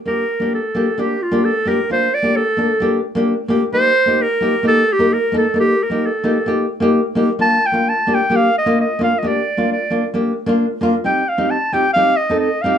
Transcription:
0.05 A#3 D4 G4 A#4
0.40 A#3 D4 G4
0.54 A4
0.75 A#3 D4 G4
0.98 A#3 D4 G4
1.22 F4
1.31 A#3 D4 G4
1.45 A4
1.65 A#3 D4 G4 A#4
1.90 A#3 D4 F4 C5
2.14 D5
2.22 A#3 D4 G4
2.36 A4
2.57 A#3 D4 A4
2.80 A#3 D4 G4
3.15 A#3 D4 G4
3.48 A#3 D4 G4
3.73 A#3 D#4 G4 C5
4.06 A#3 D#4 G4
4.22 A#4
4.41 A#3 D#4 G4
4.63 A#3 D#4 G4
4.67 A4
4.92 G4
4.99 A#3 D#4 A#4
5.14 A#4
5.32 A#3 D#4 A4
5.38 A4
5.54 A#3 D#4 A#4
5.60 G4
5.83 A#4
5.90 A#3 D#4 G4
6.06 A4
6.24 A#3 D#4 G4
6.46 A#3 D#4 G4
6.80 A#3 D#4 G4
7.15 A#3 D#4 G4
7.39 A#3 D4 F4 A5
7.66 G5
7.72 A#3 D4 F4
7.89 A5
8.07 A#3 D4 G4
8.14 G5
8.30 A#3 D4 G4
8.36 F5
8.58 D#5
8.66 A#3 D4 F4
8.81 D#5
8.99 A#3 D4 F4
9.03 F5
9.18 D#5
9.23 A#3 D4 G4
9.28 D5
9.57 A#3 D4 F4
9.72 D5
9.90 A#3 D4 F4
10.14 A#3 D4 G4
10.46 A#3 D4 F4
10.81 A#3 D4 F4
11.04 C4 D#4 G4 G5
11.29 F5
11.38 C4 D#4 G4
11.51 A5
11.72 C4 D#4 G4 G5
11.93 C4 D#4 G4 F5
12.16 D#5
12.30 C4 D#4 A4
12.39 D#5
12.62 C4 D#4 F5
12.66 G4

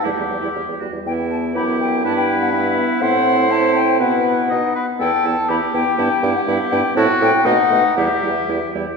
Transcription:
0.03 E2 G3 E4 G4 E5
0.16 E2 G3 E4
0.28 E2 G3 E4
0.41 E2 G3 E4
0.54 E2 G3 G4
0.68 E2 G3
0.79 E2 G3 F#4
0.93 E2 G3
1.04 E2 B3 E4 G5
1.31 A5
1.54 F#2 B3 E4 G4 B5
1.80 G5
2.04 G2 B3 E4 B4 A5
2.16 G5
2.41 F#5
2.52 B3 E4 E5
3.01 A2 C4 E4 C5 F#5
3.49 C4 E4 A5
3.75 G5
3.99 B2 B3 E4 B4 F#5
4.50 B2 B3 D#4 D#5
4.75 B4
4.99 E2 B3 E4 A4 G5
5.24 E2 B3 E4 A5
5.49 E2 B3 E4 G4 B5
5.73 E2 B3 E4 G5
5.98 G2 B3 E4 A5
6.10 G5
6.22 G2 B3 E4
6.36 F#5
6.47 G2 B3 E4 E5
6.71 G2 B3 E4 G5
6.95 A2 C4 E4 F#4 A5
7.21 A2 C4 E4 G5
7.45 B2 A3 D#4 F#5
7.70 B2 A3 D#4
7.96 E2 G3 E4 G4 E5
8.22 E2 G3 E4
8.49 E2 G3 E4
8.74 E2 G3 E4

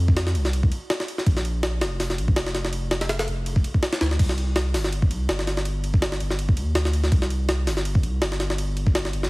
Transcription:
Already playing: F2
0.08 kick
0.17 snare, ride
0.27 snare
0.35 C2, ride
0.45 snare
0.53 ride
0.63 kick
0.72 ride
0.90 snare, ride
1.00 snare
1.08 ride
1.18 snare
1.26 A#1, kick, ride
1.37 snare
1.45 ride
1.63 snare, ride
1.81 F1, snare, ride
2.00 snare, open hi-hat
2.10 snare
2.18 A#1, ride
2.28 kick
2.36 F1, snare, ride
2.46 snare
2.55 snare, ride
2.65 snare
2.73 ride
2.91 snare, ride
3.01 snare, ride
3.09 snare, ride
3.19 snare, ride
3.28 F1, ride
3.46 ride
3.56 kick
3.64 ride
3.74 kick
3.83 snare, ride
3.93 snare, ride
4.01 D2, snare, ride
4.11 snare
4.19 C2, kick, crash, ride
4.29 snare
4.38 ride
4.56 snare, ride
4.74 G1, snare, open hi-hat
4.84 snare
4.93 ride
5.02 kick
5.10 C2, ride
5.29 G1, snare, ride
5.39 snare
5.47 snare, ride
5.57 snare
5.65 ride
5.84 ride
5.94 kick
6.02 snare, ride
6.12 snare
6.20 G1, ride
6.30 snare
6.39 ride
6.49 kick
6.57 D#2, ride
6.75 D2, snare, ride
6.85 snare
6.93 ride
7.04 snare
7.12 C2, kick, ride
7.22 snare
7.30 ride
7.49 snare, ride
7.67 G1, snare, open hi-hat
7.77 snare
7.85 ride
7.95 kick
8.03 C2, ride
8.21 G1, snare, ride
8.32 snare
8.40 snare, ride
8.50 snare
8.58 ride
8.77 ride
8.87 kick
8.95 snare, ride
9.05 snare
9.13 G1, ride
9.23 snare

